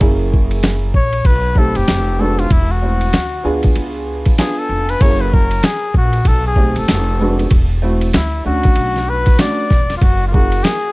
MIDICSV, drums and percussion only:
0, 0, Header, 1, 2, 480
1, 0, Start_track
1, 0, Tempo, 625000
1, 8, Time_signature, 4, 2, 24, 8
1, 8387, End_track
2, 0, Start_track
2, 0, Title_t, "Drums"
2, 6, Note_on_c, 9, 51, 74
2, 8, Note_on_c, 9, 36, 121
2, 82, Note_off_c, 9, 51, 0
2, 85, Note_off_c, 9, 36, 0
2, 258, Note_on_c, 9, 36, 96
2, 335, Note_off_c, 9, 36, 0
2, 391, Note_on_c, 9, 51, 64
2, 468, Note_off_c, 9, 51, 0
2, 483, Note_on_c, 9, 44, 52
2, 483, Note_on_c, 9, 51, 66
2, 488, Note_on_c, 9, 38, 115
2, 559, Note_off_c, 9, 44, 0
2, 559, Note_off_c, 9, 51, 0
2, 565, Note_off_c, 9, 38, 0
2, 723, Note_on_c, 9, 36, 79
2, 800, Note_off_c, 9, 36, 0
2, 865, Note_on_c, 9, 51, 52
2, 942, Note_off_c, 9, 51, 0
2, 958, Note_on_c, 9, 36, 80
2, 960, Note_on_c, 9, 51, 67
2, 1035, Note_off_c, 9, 36, 0
2, 1036, Note_off_c, 9, 51, 0
2, 1194, Note_on_c, 9, 36, 71
2, 1271, Note_off_c, 9, 36, 0
2, 1346, Note_on_c, 9, 51, 58
2, 1422, Note_off_c, 9, 51, 0
2, 1441, Note_on_c, 9, 44, 61
2, 1441, Note_on_c, 9, 51, 70
2, 1444, Note_on_c, 9, 38, 103
2, 1518, Note_off_c, 9, 44, 0
2, 1518, Note_off_c, 9, 51, 0
2, 1521, Note_off_c, 9, 38, 0
2, 1833, Note_on_c, 9, 51, 49
2, 1910, Note_off_c, 9, 51, 0
2, 1924, Note_on_c, 9, 51, 84
2, 1925, Note_on_c, 9, 36, 125
2, 2000, Note_off_c, 9, 51, 0
2, 2002, Note_off_c, 9, 36, 0
2, 2311, Note_on_c, 9, 51, 65
2, 2387, Note_off_c, 9, 51, 0
2, 2403, Note_on_c, 9, 44, 56
2, 2403, Note_on_c, 9, 51, 72
2, 2409, Note_on_c, 9, 38, 102
2, 2480, Note_off_c, 9, 44, 0
2, 2480, Note_off_c, 9, 51, 0
2, 2486, Note_off_c, 9, 38, 0
2, 2786, Note_on_c, 9, 51, 57
2, 2799, Note_on_c, 9, 36, 90
2, 2863, Note_off_c, 9, 51, 0
2, 2875, Note_off_c, 9, 36, 0
2, 2884, Note_on_c, 9, 51, 70
2, 2961, Note_off_c, 9, 51, 0
2, 3268, Note_on_c, 9, 51, 57
2, 3274, Note_on_c, 9, 36, 86
2, 3345, Note_off_c, 9, 51, 0
2, 3350, Note_off_c, 9, 36, 0
2, 3366, Note_on_c, 9, 44, 54
2, 3366, Note_on_c, 9, 51, 80
2, 3369, Note_on_c, 9, 38, 120
2, 3443, Note_off_c, 9, 44, 0
2, 3443, Note_off_c, 9, 51, 0
2, 3446, Note_off_c, 9, 38, 0
2, 3754, Note_on_c, 9, 51, 56
2, 3831, Note_off_c, 9, 51, 0
2, 3846, Note_on_c, 9, 51, 90
2, 3847, Note_on_c, 9, 36, 126
2, 3922, Note_off_c, 9, 51, 0
2, 3924, Note_off_c, 9, 36, 0
2, 4098, Note_on_c, 9, 36, 97
2, 4175, Note_off_c, 9, 36, 0
2, 4231, Note_on_c, 9, 51, 63
2, 4308, Note_off_c, 9, 51, 0
2, 4324, Note_on_c, 9, 44, 57
2, 4324, Note_on_c, 9, 51, 70
2, 4329, Note_on_c, 9, 38, 123
2, 4400, Note_off_c, 9, 44, 0
2, 4400, Note_off_c, 9, 51, 0
2, 4406, Note_off_c, 9, 38, 0
2, 4565, Note_on_c, 9, 36, 74
2, 4641, Note_off_c, 9, 36, 0
2, 4707, Note_on_c, 9, 51, 49
2, 4784, Note_off_c, 9, 51, 0
2, 4800, Note_on_c, 9, 36, 84
2, 4801, Note_on_c, 9, 51, 79
2, 4877, Note_off_c, 9, 36, 0
2, 4878, Note_off_c, 9, 51, 0
2, 5037, Note_on_c, 9, 36, 66
2, 5114, Note_off_c, 9, 36, 0
2, 5190, Note_on_c, 9, 51, 66
2, 5267, Note_off_c, 9, 51, 0
2, 5285, Note_on_c, 9, 44, 60
2, 5285, Note_on_c, 9, 51, 82
2, 5288, Note_on_c, 9, 38, 114
2, 5362, Note_off_c, 9, 44, 0
2, 5362, Note_off_c, 9, 51, 0
2, 5364, Note_off_c, 9, 38, 0
2, 5678, Note_on_c, 9, 51, 51
2, 5755, Note_off_c, 9, 51, 0
2, 5764, Note_on_c, 9, 51, 85
2, 5768, Note_on_c, 9, 36, 123
2, 5841, Note_off_c, 9, 51, 0
2, 5845, Note_off_c, 9, 36, 0
2, 6154, Note_on_c, 9, 51, 61
2, 6231, Note_off_c, 9, 51, 0
2, 6247, Note_on_c, 9, 44, 52
2, 6247, Note_on_c, 9, 51, 80
2, 6253, Note_on_c, 9, 38, 126
2, 6324, Note_off_c, 9, 44, 0
2, 6324, Note_off_c, 9, 51, 0
2, 6330, Note_off_c, 9, 38, 0
2, 6631, Note_on_c, 9, 51, 50
2, 6643, Note_on_c, 9, 36, 97
2, 6707, Note_off_c, 9, 51, 0
2, 6720, Note_off_c, 9, 36, 0
2, 6725, Note_on_c, 9, 51, 67
2, 6802, Note_off_c, 9, 51, 0
2, 6882, Note_on_c, 9, 38, 41
2, 6958, Note_off_c, 9, 38, 0
2, 7111, Note_on_c, 9, 51, 60
2, 7118, Note_on_c, 9, 36, 97
2, 7188, Note_off_c, 9, 51, 0
2, 7194, Note_off_c, 9, 36, 0
2, 7209, Note_on_c, 9, 44, 55
2, 7209, Note_on_c, 9, 51, 80
2, 7211, Note_on_c, 9, 38, 118
2, 7285, Note_off_c, 9, 44, 0
2, 7285, Note_off_c, 9, 51, 0
2, 7288, Note_off_c, 9, 38, 0
2, 7453, Note_on_c, 9, 38, 43
2, 7455, Note_on_c, 9, 36, 107
2, 7529, Note_off_c, 9, 38, 0
2, 7532, Note_off_c, 9, 36, 0
2, 7602, Note_on_c, 9, 51, 54
2, 7604, Note_on_c, 9, 38, 37
2, 7678, Note_off_c, 9, 51, 0
2, 7681, Note_off_c, 9, 38, 0
2, 7692, Note_on_c, 9, 36, 116
2, 7692, Note_on_c, 9, 51, 76
2, 7768, Note_off_c, 9, 36, 0
2, 7768, Note_off_c, 9, 51, 0
2, 7942, Note_on_c, 9, 36, 104
2, 8019, Note_off_c, 9, 36, 0
2, 8079, Note_on_c, 9, 51, 61
2, 8155, Note_off_c, 9, 51, 0
2, 8172, Note_on_c, 9, 44, 48
2, 8172, Note_on_c, 9, 51, 69
2, 8178, Note_on_c, 9, 38, 120
2, 8249, Note_off_c, 9, 44, 0
2, 8249, Note_off_c, 9, 51, 0
2, 8254, Note_off_c, 9, 38, 0
2, 8387, End_track
0, 0, End_of_file